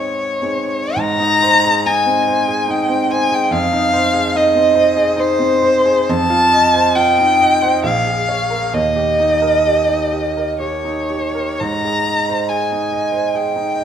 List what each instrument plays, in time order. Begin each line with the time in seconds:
Already playing: grand piano C4 D#4 G#4, violin C#5
0.41 grand piano C4 D#4 G#4
0.96 grand piano G#2, violin A#5
1.20 grand piano D#4
1.42 grand piano C5
1.65 grand piano G#4
1.86 grand piano D#4, violin G#5
2.06 grand piano C4
2.28 grand piano C5
2.48 grand piano G#4
2.68 grand piano D#4, violin G5
2.89 grand piano C4
3.10 grand piano C5, violin G#5
3.30 grand piano G#4
3.34 violin G5
3.51 grand piano F2, violin F5
3.72 grand piano D#4
3.93 grand piano C5
4.13 grand piano G#4
4.35 grand piano D#4, violin D#5
4.55 grand piano C4
4.75 grand piano C5
4.97 grand piano G#4
5.16 grand piano D#4
5.20 violin C5
5.39 grand piano C4
5.63 grand piano C5
5.85 grand piano G#4
6.09 grand piano F2, violin A5
6.30 grand piano F4
6.53 grand piano D#5
6.74 grand piano C5
6.95 grand piano F4, violin G5
7.19 grand piano D#4
7.40 grand piano D#5
7.62 grand piano C5
7.83 grand piano A#1, violin F5
8.07 grand piano G#4
8.29 grand piano C#5
8.50 grand piano A#4
8.73 grand piano D#2, violin D#5
8.96 grand piano G4
9.19 grand piano D#4
9.42 grand piano A#4
9.67 grand piano G4
9.88 grand piano D#4
10.12 grand piano G4
10.37 grand piano A#4
10.60 grand piano G4, violin C#5
10.84 grand piano D#4
11.10 grand piano G4
11.35 grand piano A#4
11.60 grand piano G#2, violin A#5
11.85 grand piano G#4
12.07 grand piano D#5
12.29 grand piano C5
12.49 grand piano G#4, violin G#5
12.72 grand piano D#4
12.93 grand piano D#5
13.12 grand piano C5
13.35 grand piano G#4, violin G5
13.56 grand piano D#4
13.76 grand piano D#5